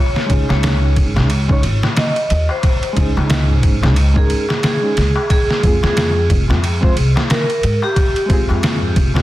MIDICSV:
0, 0, Header, 1, 6, 480
1, 0, Start_track
1, 0, Tempo, 666667
1, 1896, Time_signature, 4, 2, 24, 8
1, 6638, End_track
2, 0, Start_track
2, 0, Title_t, "Vibraphone"
2, 0, Program_c, 0, 11
2, 0, Note_on_c, 0, 73, 92
2, 315, Note_off_c, 0, 73, 0
2, 364, Note_on_c, 0, 73, 82
2, 670, Note_off_c, 0, 73, 0
2, 1425, Note_on_c, 0, 75, 87
2, 1758, Note_off_c, 0, 75, 0
2, 1806, Note_on_c, 0, 72, 81
2, 2225, Note_off_c, 0, 72, 0
2, 3007, Note_on_c, 0, 68, 79
2, 3311, Note_off_c, 0, 68, 0
2, 3353, Note_on_c, 0, 68, 84
2, 3785, Note_off_c, 0, 68, 0
2, 3825, Note_on_c, 0, 68, 92
2, 4158, Note_off_c, 0, 68, 0
2, 4208, Note_on_c, 0, 68, 82
2, 4512, Note_off_c, 0, 68, 0
2, 5264, Note_on_c, 0, 70, 87
2, 5598, Note_off_c, 0, 70, 0
2, 5641, Note_on_c, 0, 67, 83
2, 6062, Note_off_c, 0, 67, 0
2, 6638, End_track
3, 0, Start_track
3, 0, Title_t, "Reed electric piano"
3, 0, Program_c, 1, 4
3, 188, Note_on_c, 1, 56, 79
3, 206, Note_on_c, 1, 61, 71
3, 225, Note_on_c, 1, 63, 68
3, 242, Note_on_c, 1, 68, 81
3, 788, Note_off_c, 1, 56, 0
3, 797, Note_off_c, 1, 61, 0
3, 807, Note_off_c, 1, 63, 0
3, 815, Note_off_c, 1, 68, 0
3, 822, Note_on_c, 1, 56, 64
3, 832, Note_on_c, 1, 61, 60
3, 842, Note_on_c, 1, 63, 60
3, 850, Note_on_c, 1, 68, 73
3, 915, Note_off_c, 1, 56, 0
3, 920, Note_off_c, 1, 61, 0
3, 925, Note_off_c, 1, 63, 0
3, 929, Note_off_c, 1, 68, 0
3, 1066, Note_on_c, 1, 56, 81
3, 1076, Note_on_c, 1, 61, 77
3, 1085, Note_on_c, 1, 63, 77
3, 1096, Note_on_c, 1, 73, 95
3, 1157, Note_off_c, 1, 56, 0
3, 1162, Note_off_c, 1, 61, 0
3, 1167, Note_off_c, 1, 63, 0
3, 1172, Note_off_c, 1, 73, 0
3, 2110, Note_on_c, 1, 56, 83
3, 2125, Note_on_c, 1, 61, 76
3, 2145, Note_on_c, 1, 63, 78
3, 2165, Note_on_c, 1, 68, 88
3, 2709, Note_off_c, 1, 56, 0
3, 2717, Note_off_c, 1, 61, 0
3, 2727, Note_off_c, 1, 63, 0
3, 2737, Note_off_c, 1, 68, 0
3, 2749, Note_on_c, 1, 56, 69
3, 2757, Note_on_c, 1, 61, 63
3, 2768, Note_on_c, 1, 63, 62
3, 2776, Note_on_c, 1, 68, 76
3, 2839, Note_off_c, 1, 56, 0
3, 2843, Note_off_c, 1, 61, 0
3, 2848, Note_off_c, 1, 63, 0
3, 2852, Note_off_c, 1, 68, 0
3, 2982, Note_on_c, 1, 56, 83
3, 2992, Note_on_c, 1, 61, 75
3, 2999, Note_on_c, 1, 63, 74
3, 3012, Note_on_c, 1, 70, 90
3, 3195, Note_off_c, 1, 56, 0
3, 3200, Note_off_c, 1, 61, 0
3, 3204, Note_off_c, 1, 63, 0
3, 3210, Note_off_c, 1, 70, 0
3, 3466, Note_on_c, 1, 56, 76
3, 3477, Note_on_c, 1, 61, 68
3, 3484, Note_on_c, 1, 63, 67
3, 3494, Note_on_c, 1, 68, 79
3, 3557, Note_off_c, 1, 56, 0
3, 3563, Note_off_c, 1, 61, 0
3, 3566, Note_off_c, 1, 63, 0
3, 3571, Note_off_c, 1, 68, 0
3, 4030, Note_on_c, 1, 56, 75
3, 4049, Note_on_c, 1, 60, 66
3, 4065, Note_on_c, 1, 65, 70
3, 4084, Note_on_c, 1, 68, 84
3, 4629, Note_off_c, 1, 56, 0
3, 4639, Note_off_c, 1, 60, 0
3, 4647, Note_off_c, 1, 65, 0
3, 4656, Note_off_c, 1, 68, 0
3, 4665, Note_on_c, 1, 56, 63
3, 4676, Note_on_c, 1, 60, 62
3, 4684, Note_on_c, 1, 65, 61
3, 4695, Note_on_c, 1, 68, 71
3, 4757, Note_off_c, 1, 56, 0
3, 4762, Note_off_c, 1, 60, 0
3, 4766, Note_off_c, 1, 65, 0
3, 4772, Note_off_c, 1, 68, 0
3, 4899, Note_on_c, 1, 56, 86
3, 4907, Note_on_c, 1, 60, 75
3, 4917, Note_on_c, 1, 65, 77
3, 4926, Note_on_c, 1, 72, 94
3, 4994, Note_off_c, 1, 56, 0
3, 4998, Note_off_c, 1, 60, 0
3, 5003, Note_off_c, 1, 65, 0
3, 5007, Note_off_c, 1, 72, 0
3, 5947, Note_on_c, 1, 56, 82
3, 5963, Note_on_c, 1, 60, 76
3, 5983, Note_on_c, 1, 65, 75
3, 6001, Note_on_c, 1, 68, 89
3, 6548, Note_off_c, 1, 56, 0
3, 6556, Note_off_c, 1, 60, 0
3, 6566, Note_off_c, 1, 65, 0
3, 6575, Note_off_c, 1, 68, 0
3, 6582, Note_on_c, 1, 56, 69
3, 6589, Note_on_c, 1, 60, 66
3, 6600, Note_on_c, 1, 65, 65
3, 6611, Note_on_c, 1, 68, 80
3, 6638, Note_off_c, 1, 56, 0
3, 6638, Note_off_c, 1, 60, 0
3, 6638, Note_off_c, 1, 65, 0
3, 6638, Note_off_c, 1, 68, 0
3, 6638, End_track
4, 0, Start_track
4, 0, Title_t, "Upright bass"
4, 0, Program_c, 2, 32
4, 216, Note_on_c, 2, 37, 92
4, 339, Note_off_c, 2, 37, 0
4, 359, Note_on_c, 2, 37, 84
4, 696, Note_on_c, 2, 32, 73
4, 707, Note_off_c, 2, 37, 0
4, 841, Note_on_c, 2, 37, 88
4, 852, Note_off_c, 2, 32, 0
4, 1159, Note_off_c, 2, 37, 0
4, 1180, Note_on_c, 2, 32, 89
4, 1301, Note_off_c, 2, 32, 0
4, 1661, Note_on_c, 2, 39, 84
4, 1781, Note_off_c, 2, 39, 0
4, 2137, Note_on_c, 2, 37, 88
4, 2260, Note_off_c, 2, 37, 0
4, 2283, Note_on_c, 2, 37, 84
4, 2615, Note_off_c, 2, 37, 0
4, 2615, Note_on_c, 2, 32, 74
4, 2761, Note_on_c, 2, 37, 91
4, 2772, Note_off_c, 2, 32, 0
4, 3079, Note_off_c, 2, 37, 0
4, 3579, Note_on_c, 2, 37, 75
4, 3701, Note_off_c, 2, 37, 0
4, 4057, Note_on_c, 2, 41, 89
4, 4179, Note_off_c, 2, 41, 0
4, 4198, Note_on_c, 2, 41, 81
4, 4537, Note_on_c, 2, 29, 70
4, 4548, Note_off_c, 2, 41, 0
4, 4678, Note_on_c, 2, 41, 85
4, 4689, Note_off_c, 2, 29, 0
4, 4998, Note_off_c, 2, 41, 0
4, 5019, Note_on_c, 2, 36, 81
4, 5141, Note_off_c, 2, 36, 0
4, 5497, Note_on_c, 2, 44, 83
4, 5620, Note_off_c, 2, 44, 0
4, 5973, Note_on_c, 2, 41, 84
4, 6098, Note_off_c, 2, 41, 0
4, 6118, Note_on_c, 2, 41, 87
4, 6454, Note_on_c, 2, 29, 68
4, 6464, Note_off_c, 2, 41, 0
4, 6597, Note_on_c, 2, 41, 82
4, 6607, Note_off_c, 2, 29, 0
4, 6638, Note_off_c, 2, 41, 0
4, 6638, End_track
5, 0, Start_track
5, 0, Title_t, "Darbuka"
5, 111, Note_on_c, 9, 63, 39
5, 183, Note_off_c, 9, 63, 0
5, 354, Note_on_c, 9, 63, 77
5, 426, Note_off_c, 9, 63, 0
5, 462, Note_on_c, 9, 63, 65
5, 534, Note_off_c, 9, 63, 0
5, 602, Note_on_c, 9, 63, 38
5, 674, Note_off_c, 9, 63, 0
5, 834, Note_on_c, 9, 64, 77
5, 836, Note_on_c, 9, 63, 79
5, 906, Note_off_c, 9, 64, 0
5, 908, Note_off_c, 9, 63, 0
5, 941, Note_on_c, 9, 63, 56
5, 1013, Note_off_c, 9, 63, 0
5, 1075, Note_on_c, 9, 63, 40
5, 1147, Note_off_c, 9, 63, 0
5, 1317, Note_on_c, 9, 63, 72
5, 1389, Note_off_c, 9, 63, 0
5, 1416, Note_on_c, 9, 63, 66
5, 1488, Note_off_c, 9, 63, 0
5, 1555, Note_on_c, 9, 63, 43
5, 1627, Note_off_c, 9, 63, 0
5, 1792, Note_on_c, 9, 63, 73
5, 1864, Note_off_c, 9, 63, 0
5, 1892, Note_on_c, 9, 63, 59
5, 1964, Note_off_c, 9, 63, 0
5, 2031, Note_on_c, 9, 63, 40
5, 2103, Note_off_c, 9, 63, 0
5, 2282, Note_on_c, 9, 63, 79
5, 2354, Note_off_c, 9, 63, 0
5, 2374, Note_on_c, 9, 63, 59
5, 2446, Note_off_c, 9, 63, 0
5, 2516, Note_on_c, 9, 63, 35
5, 2518, Note_on_c, 9, 64, 57
5, 2588, Note_off_c, 9, 63, 0
5, 2590, Note_off_c, 9, 64, 0
5, 2755, Note_on_c, 9, 64, 76
5, 2756, Note_on_c, 9, 63, 76
5, 2827, Note_off_c, 9, 64, 0
5, 2828, Note_off_c, 9, 63, 0
5, 2859, Note_on_c, 9, 63, 53
5, 2931, Note_off_c, 9, 63, 0
5, 2994, Note_on_c, 9, 63, 36
5, 3000, Note_on_c, 9, 64, 69
5, 3066, Note_off_c, 9, 63, 0
5, 3072, Note_off_c, 9, 64, 0
5, 3230, Note_on_c, 9, 63, 65
5, 3302, Note_off_c, 9, 63, 0
5, 3336, Note_on_c, 9, 63, 62
5, 3408, Note_off_c, 9, 63, 0
5, 3476, Note_on_c, 9, 63, 36
5, 3548, Note_off_c, 9, 63, 0
5, 3711, Note_on_c, 9, 63, 82
5, 3783, Note_off_c, 9, 63, 0
5, 3811, Note_on_c, 9, 63, 61
5, 3883, Note_off_c, 9, 63, 0
5, 3955, Note_on_c, 9, 63, 39
5, 4027, Note_off_c, 9, 63, 0
5, 4196, Note_on_c, 9, 63, 64
5, 4268, Note_off_c, 9, 63, 0
5, 4295, Note_on_c, 9, 63, 57
5, 4367, Note_off_c, 9, 63, 0
5, 4425, Note_on_c, 9, 63, 34
5, 4497, Note_off_c, 9, 63, 0
5, 4673, Note_on_c, 9, 64, 65
5, 4678, Note_on_c, 9, 63, 70
5, 4745, Note_off_c, 9, 64, 0
5, 4750, Note_off_c, 9, 63, 0
5, 4769, Note_on_c, 9, 63, 55
5, 4841, Note_off_c, 9, 63, 0
5, 4910, Note_on_c, 9, 63, 37
5, 4982, Note_off_c, 9, 63, 0
5, 5154, Note_on_c, 9, 63, 71
5, 5226, Note_off_c, 9, 63, 0
5, 5255, Note_on_c, 9, 63, 63
5, 5327, Note_off_c, 9, 63, 0
5, 5392, Note_on_c, 9, 63, 41
5, 5464, Note_off_c, 9, 63, 0
5, 5632, Note_on_c, 9, 63, 82
5, 5704, Note_off_c, 9, 63, 0
5, 5730, Note_on_c, 9, 63, 62
5, 5802, Note_off_c, 9, 63, 0
5, 5880, Note_on_c, 9, 63, 36
5, 5952, Note_off_c, 9, 63, 0
5, 6111, Note_on_c, 9, 63, 71
5, 6183, Note_off_c, 9, 63, 0
5, 6215, Note_on_c, 9, 63, 56
5, 6287, Note_off_c, 9, 63, 0
5, 6351, Note_on_c, 9, 64, 50
5, 6360, Note_on_c, 9, 63, 32
5, 6423, Note_off_c, 9, 64, 0
5, 6432, Note_off_c, 9, 63, 0
5, 6588, Note_on_c, 9, 64, 69
5, 6590, Note_on_c, 9, 63, 68
5, 6638, Note_off_c, 9, 63, 0
5, 6638, Note_off_c, 9, 64, 0
5, 6638, End_track
6, 0, Start_track
6, 0, Title_t, "Drums"
6, 117, Note_on_c, 9, 38, 39
6, 189, Note_off_c, 9, 38, 0
6, 214, Note_on_c, 9, 51, 64
6, 215, Note_on_c, 9, 36, 92
6, 286, Note_off_c, 9, 51, 0
6, 287, Note_off_c, 9, 36, 0
6, 361, Note_on_c, 9, 38, 44
6, 433, Note_off_c, 9, 38, 0
6, 455, Note_on_c, 9, 51, 79
6, 460, Note_on_c, 9, 38, 114
6, 527, Note_off_c, 9, 51, 0
6, 532, Note_off_c, 9, 38, 0
6, 695, Note_on_c, 9, 36, 82
6, 695, Note_on_c, 9, 51, 62
6, 767, Note_off_c, 9, 36, 0
6, 767, Note_off_c, 9, 51, 0
6, 839, Note_on_c, 9, 38, 42
6, 911, Note_off_c, 9, 38, 0
6, 934, Note_on_c, 9, 51, 84
6, 1006, Note_off_c, 9, 51, 0
6, 1075, Note_on_c, 9, 36, 88
6, 1147, Note_off_c, 9, 36, 0
6, 1175, Note_on_c, 9, 51, 64
6, 1247, Note_off_c, 9, 51, 0
6, 1320, Note_on_c, 9, 38, 50
6, 1392, Note_off_c, 9, 38, 0
6, 1415, Note_on_c, 9, 51, 82
6, 1420, Note_on_c, 9, 38, 106
6, 1487, Note_off_c, 9, 51, 0
6, 1492, Note_off_c, 9, 38, 0
6, 1557, Note_on_c, 9, 51, 38
6, 1629, Note_off_c, 9, 51, 0
6, 1658, Note_on_c, 9, 51, 58
6, 1730, Note_off_c, 9, 51, 0
6, 1895, Note_on_c, 9, 51, 80
6, 1896, Note_on_c, 9, 36, 109
6, 1967, Note_off_c, 9, 51, 0
6, 1968, Note_off_c, 9, 36, 0
6, 2036, Note_on_c, 9, 51, 42
6, 2108, Note_off_c, 9, 51, 0
6, 2135, Note_on_c, 9, 51, 66
6, 2136, Note_on_c, 9, 36, 85
6, 2207, Note_off_c, 9, 51, 0
6, 2208, Note_off_c, 9, 36, 0
6, 2373, Note_on_c, 9, 51, 88
6, 2378, Note_on_c, 9, 38, 113
6, 2445, Note_off_c, 9, 51, 0
6, 2450, Note_off_c, 9, 38, 0
6, 2614, Note_on_c, 9, 51, 59
6, 2616, Note_on_c, 9, 36, 83
6, 2686, Note_off_c, 9, 51, 0
6, 2688, Note_off_c, 9, 36, 0
6, 2761, Note_on_c, 9, 38, 53
6, 2833, Note_off_c, 9, 38, 0
6, 2854, Note_on_c, 9, 51, 84
6, 2926, Note_off_c, 9, 51, 0
6, 2996, Note_on_c, 9, 36, 91
6, 3068, Note_off_c, 9, 36, 0
6, 3095, Note_on_c, 9, 51, 58
6, 3167, Note_off_c, 9, 51, 0
6, 3242, Note_on_c, 9, 38, 45
6, 3314, Note_off_c, 9, 38, 0
6, 3335, Note_on_c, 9, 51, 81
6, 3340, Note_on_c, 9, 38, 104
6, 3407, Note_off_c, 9, 51, 0
6, 3412, Note_off_c, 9, 38, 0
6, 3578, Note_on_c, 9, 51, 57
6, 3583, Note_on_c, 9, 38, 46
6, 3650, Note_off_c, 9, 51, 0
6, 3655, Note_off_c, 9, 38, 0
6, 3817, Note_on_c, 9, 36, 98
6, 3817, Note_on_c, 9, 51, 84
6, 3889, Note_off_c, 9, 36, 0
6, 3889, Note_off_c, 9, 51, 0
6, 3964, Note_on_c, 9, 38, 39
6, 4036, Note_off_c, 9, 38, 0
6, 4056, Note_on_c, 9, 36, 86
6, 4057, Note_on_c, 9, 51, 58
6, 4128, Note_off_c, 9, 36, 0
6, 4129, Note_off_c, 9, 51, 0
6, 4202, Note_on_c, 9, 38, 46
6, 4274, Note_off_c, 9, 38, 0
6, 4297, Note_on_c, 9, 51, 83
6, 4302, Note_on_c, 9, 38, 109
6, 4369, Note_off_c, 9, 51, 0
6, 4374, Note_off_c, 9, 38, 0
6, 4536, Note_on_c, 9, 36, 85
6, 4536, Note_on_c, 9, 51, 62
6, 4608, Note_off_c, 9, 36, 0
6, 4608, Note_off_c, 9, 51, 0
6, 4684, Note_on_c, 9, 38, 43
6, 4756, Note_off_c, 9, 38, 0
6, 4778, Note_on_c, 9, 51, 88
6, 4850, Note_off_c, 9, 51, 0
6, 4916, Note_on_c, 9, 36, 95
6, 4988, Note_off_c, 9, 36, 0
6, 5016, Note_on_c, 9, 51, 63
6, 5088, Note_off_c, 9, 51, 0
6, 5162, Note_on_c, 9, 38, 50
6, 5234, Note_off_c, 9, 38, 0
6, 5257, Note_on_c, 9, 51, 77
6, 5262, Note_on_c, 9, 38, 105
6, 5329, Note_off_c, 9, 51, 0
6, 5334, Note_off_c, 9, 38, 0
6, 5398, Note_on_c, 9, 51, 36
6, 5470, Note_off_c, 9, 51, 0
6, 5496, Note_on_c, 9, 51, 60
6, 5568, Note_off_c, 9, 51, 0
6, 5734, Note_on_c, 9, 36, 98
6, 5734, Note_on_c, 9, 51, 80
6, 5806, Note_off_c, 9, 36, 0
6, 5806, Note_off_c, 9, 51, 0
6, 5876, Note_on_c, 9, 51, 43
6, 5948, Note_off_c, 9, 51, 0
6, 5974, Note_on_c, 9, 36, 88
6, 5974, Note_on_c, 9, 51, 62
6, 6046, Note_off_c, 9, 36, 0
6, 6046, Note_off_c, 9, 51, 0
6, 6214, Note_on_c, 9, 51, 83
6, 6219, Note_on_c, 9, 38, 112
6, 6286, Note_off_c, 9, 51, 0
6, 6291, Note_off_c, 9, 38, 0
6, 6453, Note_on_c, 9, 36, 85
6, 6453, Note_on_c, 9, 51, 62
6, 6525, Note_off_c, 9, 36, 0
6, 6525, Note_off_c, 9, 51, 0
6, 6599, Note_on_c, 9, 38, 52
6, 6638, Note_off_c, 9, 38, 0
6, 6638, End_track
0, 0, End_of_file